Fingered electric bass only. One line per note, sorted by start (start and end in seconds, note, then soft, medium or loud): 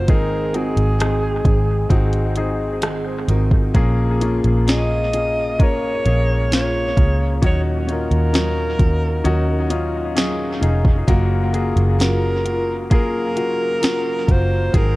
0.09 0.73 G#1 medium
0.76 1.41 G#1 medium
1.45 1.87 G#1 medium
1.90 3.25 G#1 medium
3.28 3.71 G#1 medium
3.75 4.40 A#1 medium
4.44 6.02 A#1 medium
6.06 6.93 A#1 medium
6.97 7.40 C#2 medium
7.42 8.07 D#2 medium
8.11 8.75 D#2 medium
8.79 9.22 D#2 medium
9.25 10.58 D#2 medium
10.62 11.04 F1 medium
11.08 11.72 F#1 medium
11.76 14.24 F#1 medium
14.28 14.71 F#1 medium
14.74 14.96 G#1 medium